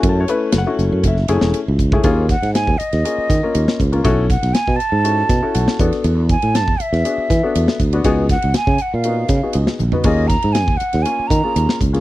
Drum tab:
CC |----------------|----------------|----------------|----------------|
RD |b-b-b---b-b-b---|x-xxx-xxx-x-x-xx|x-xxx-x-x-x-x-xx|x-xxx-xxx-x-x-xx|
HH |p-p-p-p-p-p-p-p-|p-p-p-p-p-p-p-p-|p-p-p-p-p-p-p-p-|p-p-p-p-p-p-p-p-|
SD |----o-o--oooo---|--ooo--o--o--o--|--ooo-----o--o-o|----o--o--o--o--|
T1 |----------------|----------------|----------------|----------------|
FT |----------------|----------------|----------------|----------------|
BD |o-------o-----oo|o-o--o----o---o-|o-o--o----o---o-|--o--o----o---o-|

CC |----------------|x---------------|
RD |x-xxx-x-x-x-x---|x-xxx-xxx-x-x-xx|
HH |p-p-p-p-p-p-p-p-|p-p-p-p-p-p-p-p-|
SD |--o-o-----o--o--|--o-o--o-----o-o|
T1 |--------------o-|----------------|
FT |---------------o|----------------|
BD |o-o--o----o-----|o-o--o----o---o-|